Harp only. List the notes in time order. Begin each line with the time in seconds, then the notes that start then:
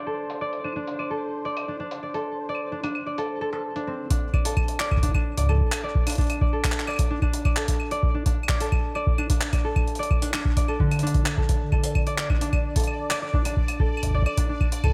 Already playing: D4 D5
0.07 A4
0.41 D5
0.64 D4
0.76 D4
0.99 D5
1.10 A4
1.45 D5
1.68 D4
1.80 D4
2.03 D5
2.14 A4
2.49 D5
2.72 D4
2.83 D4
3.06 D5
3.18 A4
3.41 A4
3.53 A4
3.76 D4
3.87 C4
4.10 D4
4.34 D5
4.45 A4
4.80 D5
5.03 D4
5.14 D4
5.37 D5
5.49 A4
5.84 D5
6.07 D4
6.18 D4
6.41 D5
6.53 A4
6.88 D5
7.11 D4
7.22 D4
7.45 D5
7.57 A4
7.91 D5
8.14 D4
8.26 D4
8.49 D5
8.61 A4
8.95 D5
9.18 D4
9.30 D4
9.53 D5
9.65 A4
9.99 D5
10.22 D4
10.34 D4
10.57 D5
10.68 A4
10.80 D3
11.03 D4
11.26 D4
11.38 A4
11.72 A4
12.07 D5
12.18 D5
12.30 D4
12.41 D4
12.76 A4
13.10 D5
13.22 D5
13.34 D4
13.45 D4
13.80 A4
14.14 D5
14.26 D5
14.37 D4
14.49 D4
14.84 A4